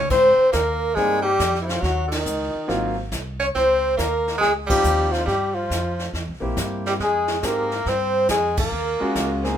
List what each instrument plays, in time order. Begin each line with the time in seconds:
0.00 muted trumpet C#5
0.10 upright bass G#2, tenor saxophone C4, muted trumpet C5, brush sweep, kick, snare, crash
0.38 muted upright bass stroke
0.52 upright bass D#2, tenor saxophone A#3, muted trumpet A#4, kick, snare, hi-hat pedal
0.95 upright bass G2, grand piano G3 A#3 C4 D#4, tenor saxophone G#3, muted trumpet G#4, brush sweep, kick, snare
1.22 tenor saxophone G3, muted trumpet G4
1.39 upright bass F2, kick, snare, hi-hat pedal
1.55 snare
1.61 tenor saxophone E3 F3, muted trumpet E4
1.69 muted trumpet F4, snare
1.80 upright bass D#2, tenor saxophone F#3, muted trumpet F#4, brush sweep, kick, snare
2.08 tenor saxophone D#3, muted trumpet D#4, ride
2.12 snare
2.26 upright bass C#2, hi-hat pedal
2.55 muted upright bass stroke
2.68 upright bass G#1, grand piano F#3 A#3 C4 F4, brush sweep, kick, snare
3.11 upright bass C2, kick, snare, hi-hat pedal
3.39 tenor saxophone C#4, muted trumpet C#5
3.55 upright bass C#2, tenor saxophone C4, muted trumpet C5, brush sweep, kick, snare
3.97 upright bass D#2, tenor saxophone A#3, muted trumpet A#4, kick, snare, hi-hat pedal
4.28 snare
4.38 upright bass C#2, tenor saxophone G#3, muted trumpet G#4, brush sweep, kick, snare
4.67 grand piano F3 C4 D#4 F4, tenor saxophone G3, muted trumpet G4, kick, ride
4.84 upright bass D#2, hi-hat pedal
5.10 tenor saxophone F3, muted trumpet F4, snare
5.25 upright bass G2, tenor saxophone G3, muted trumpet G4, brush sweep, kick, snare
5.54 tenor saxophone F3, muted trumpet F4
5.70 upright bass F2, kick, snare, hi-hat pedal
5.99 snare
6.14 upright bass E2, brush sweep, kick, snare
6.28 upright bass C2
6.40 upright bass A#1, grand piano A#3 C4 E4 G4
6.57 upright bass G2, kick, snare, hi-hat pedal
6.86 tenor saxophone G3, muted trumpet G4, snare
7.00 upright bass F2, tenor saxophone G#3, muted trumpet G#4, brush sweep, kick, snare
7.28 snare
7.39 upright bass G#2, tenor saxophone G#3, grand piano G#3, muted trumpet G#4, kick, hi-hat pedal
7.43 tenor saxophone A#3, grand piano C4 D#4 G4, muted trumpet A#4, snare
7.71 snare
7.86 upright bass G2, tenor saxophone C4, muted trumpet C5, brush sweep, kick, snare
8.28 upright bass F2, tenor saxophone G#3, muted trumpet G#4, kick, snare, hi-hat pedal
8.57 tenor saxophone A#3, muted trumpet A#4, kick, ride
8.72 upright bass D#2, brush sweep
9.00 grand piano G#3 C#4 F4 F#4, muted upright bass stroke
9.15 upright bass C#2, kick, snare, hi-hat pedal
9.43 grand piano A#3 C4 D#4 G#4, snare